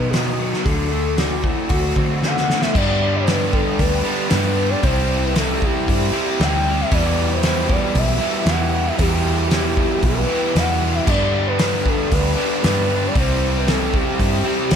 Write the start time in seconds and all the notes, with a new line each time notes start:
Already playing: B2 D#3 F#3 B3 D#4 F#4 B4
0.10 D#3 B3 F#4, snare, open hi-hat
0.39 F#3
0.53 snare
0.64 D2 D3 A4, kick, open hi-hat
0.92 A3
1.17 D3 F#4, snare, open hi-hat
1.43 A3 C4 E4, kick
1.69 D2 A3 F#4, kick, open hi-hat
1.95 D3 C4, kick
2.23 D3 A3 F#5, snare
2.37 snare
2.48 D3 A3, snare
2.61 E5, snare
2.75 G2 D3 G3 B3 D4 G4 D5, kick, crash
3.16 B4
3.27 G2 D3 G3 B3 D4 G4, snare, open hi-hat
3.53 G3 B3 D4 G4 A4, kick
3.79 D2 B4, kick, open hi-hat
4.06 G2 D3 G3 B3 D4 G4
4.29 G2 D3 G3 B4, snare, open hi-hat
4.33 B3 D4 G4
4.56 G3 B3 D4
4.70 D5
4.83 C2 C3 E3 G3 C4 E4 G4 C5, kick, open hi-hat
5.25 B4
5.35 C3 E3 G3 C4 E4 G4 A4, snare, open hi-hat
5.60 G3 E4 G4, kick
5.88 G2, kick, open hi-hat
6.12 G3 C4 E4 G4
6.16 C3
6.38 D2 C3 E3 G3 C4 E4 G4 G5, snare, open hi-hat
6.65 G3 C4 E4
6.81 E5
6.91 E2 B2 E3 G3 B3 E4 G4 D5, kick, open hi-hat
7.33 C5
7.43 E2 B2 E3 G3 B3 E4 G4, snare, open hi-hat
7.69 E3 G3 E4 G4 D5, kick
7.95 B1 E5, kick, open hi-hat
8.19 E2 B2 E3 G3 B3 E4 G4
8.24 E3
8.46 E2 B2 E3 G3 B3 E4, snare, open hi-hat
8.50 G4 F#5
8.72 G3 B3 E4
8.87 E5
8.98 E2 B2 E3 G3 B3 E4 G4, kick, open hi-hat
9.51 E2 B2 E3 G3 B3 E4 G4, snare, open hi-hat
9.77 E3 G3 E4 G4, kick
10.03 B1 B4, kick, open hi-hat
10.28 E2 B2 E3 G3 B3 E4 G4
10.55 E2 B2 E3 G3 B3 E4 G4 F#5, snare, open hi-hat
10.59 E3
10.81 G3 B3 E4
10.94 E5
11.07 G2 D3 G3 B3 D4 G4 D5, kick, crash
11.47 B4
11.57 G2 D3 G3 B3 D4 G4, snare, open hi-hat
11.85 G3 B3 D4 G4 A4, kick
12.12 D2 B4, kick, open hi-hat
12.37 G2 D3 G3 B3 D4 G4
12.61 G2 D3 G3 B3 D4 G4, snare, open hi-hat
12.65 B4
12.89 G3 B3 D4
13.07 D5
13.14 C2 C3 E3 G3 C4 E4 G4, kick, open hi-hat
13.18 C5
13.57 B4
13.66 C3 E3 G3 C4 G4 A4, snare, open hi-hat
13.70 E4
13.94 G3 C4 G4, kick
14.19 G2, kick, open hi-hat
14.44 C3 G3 C4 E4 G4
14.70 D2 C3 E3 G3 C4 G5, snare, open hi-hat